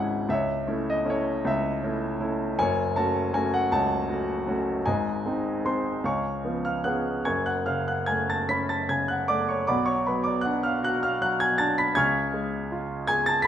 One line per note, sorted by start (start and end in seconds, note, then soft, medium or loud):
0.00 0.25 G#1 medium
0.00 0.25 C#2 medium
0.00 0.32 G#3 soft
0.00 0.32 C#4 soft
0.00 0.32 E4 medium
0.00 0.30 E5 medium
0.00 0.31 F#5 medium
0.00 0.31 G#5 medium
0.00 0.31 A5 medium
0.28 1.43 C#2 medium
0.28 0.90 E5 medium
0.33 1.08 C#5 medium
0.67 1.03 A3 soft
0.67 1.04 C#4 soft
0.67 1.04 E4 medium
0.90 1.09 D#5 medium
1.05 1.67 A3 medium
1.05 1.67 C#4 soft
1.05 1.67 E4 medium
1.10 1.48 C#5 medium
1.45 2.55 C#2 medium
1.45 2.27 E5 medium
1.83 2.19 A3 soft
1.83 2.19 C#4 soft
1.83 2.19 E4 medium
2.20 2.50 A3 medium
2.20 2.50 C#4 soft
2.20 2.51 E4 medium
2.59 4.81 F#1 medium
2.59 4.81 F#2 medium
2.59 3.68 C#5 medium
2.59 2.97 G#5 loud
2.96 3.32 A3 soft
2.96 3.32 C#4 soft
2.96 3.33 F#4 medium
2.96 3.34 A5 medium
3.33 3.94 A3 medium
3.33 3.94 C#4 soft
3.33 3.94 F#4 medium
3.33 3.53 G#5 medium
3.54 3.72 F#5 medium
3.72 4.82 C#2 medium
3.72 4.82 C#5 medium
3.72 4.89 A5 medium
4.09 4.46 A3 soft
4.09 4.46 C#4 soft
4.09 4.47 F#4 medium
4.48 4.78 A3 medium
4.48 4.78 C#4 soft
4.48 4.78 F#4 medium
4.86 6.00 G#1 medium
4.86 6.01 G#2 medium
4.86 6.40 D#5 medium
4.86 6.04 G#5 medium
5.26 5.63 G#3 soft
5.26 5.64 C4 soft
5.26 5.64 D#4 medium
5.65 5.96 G#3 soft
5.65 5.96 C4 soft
5.65 5.97 D#4 medium
5.65 6.02 C5 soft
5.65 6.05 C6 medium
6.04 7.22 C#2 medium
6.04 6.61 C#5 soft
6.04 6.60 F5 medium
6.04 6.61 G#5 medium
6.04 6.67 C#6 medium
6.45 7.10 F3 soft
6.45 6.83 B3 soft
6.45 6.83 C#4 soft
6.65 6.84 F5 medium
6.65 6.85 F6 medium
6.84 7.17 B3 soft
6.84 7.17 C#4 soft
6.84 7.18 G#4 soft
6.84 7.23 F#5 medium
6.84 7.27 F#6 medium
7.25 9.64 F#1 medium
7.25 9.64 F#2 medium
7.25 7.45 G#5 medium
7.25 7.44 C#6 medium
7.25 7.47 G#6 medium
7.46 7.65 F#5 medium
7.46 7.67 F#6 medium
7.66 8.88 C#3 soft
7.66 7.86 F5 medium
7.66 7.87 F6 medium
7.88 8.07 F#5 medium
7.88 8.07 F#6 medium
8.06 9.28 A3 soft
8.06 8.26 G#5 medium
8.06 8.28 G#6 medium
8.30 8.48 A5 medium
8.30 8.48 A6 medium
8.49 9.64 C#4 medium
8.49 8.68 B5 medium
8.49 8.69 B6 medium
8.69 8.88 A5 medium
8.69 8.89 A6 medium
8.89 9.66 C#3 soft
8.89 9.08 G#5 medium
8.89 9.09 G#6 medium
9.08 9.28 F#5 medium
9.08 9.29 F#6 medium
9.28 9.67 A3 medium
9.28 9.47 D5 medium
9.28 9.48 D6 medium
9.49 9.67 C#5 medium
9.49 9.68 C#6 medium
9.67 11.92 B1 medium
9.67 11.92 B2 medium
9.67 9.86 D5 medium
9.67 9.86 F#5 medium
9.67 9.86 B5 medium
9.67 9.88 D6 medium
9.86 10.05 C#5 medium
9.86 10.06 C#6 medium
10.07 11.20 F#3 soft
10.07 10.25 B4 medium
10.07 10.26 B5 medium
10.24 10.44 D5 medium
10.24 10.44 D6 medium
10.41 10.62 F#5 medium
10.41 10.63 F#6 medium
10.46 11.58 D4 medium
10.63 10.82 F5 medium
10.63 10.83 F6 medium
10.83 11.92 F#4 medium
10.83 11.02 F#5 medium
10.83 11.03 F#6 medium
11.03 11.20 F5 medium
11.03 11.22 F6 medium
11.21 11.93 F#3 medium
11.21 11.40 F#5 medium
11.21 11.40 F#6 medium
11.40 11.58 G#5 medium
11.40 11.59 G#6 medium
11.58 11.95 D4 medium
11.58 11.76 A5 medium
11.58 11.77 A6 medium
11.78 11.95 B5 medium
11.78 11.97 B6 medium
11.95 13.47 C#2 medium
11.95 13.47 C#3 medium
11.95 13.04 G#5 medium
11.95 13.04 C#6 medium
11.95 13.05 F6 medium
11.95 13.06 G#6 loud
12.34 13.44 G#3 medium
12.72 13.47 F4 medium
13.07 13.47 G#4 medium
13.07 13.25 G#5 medium
13.07 13.27 G#6 loud
13.26 13.45 A5 medium
13.26 13.46 A6 loud
13.42 13.47 B6 loud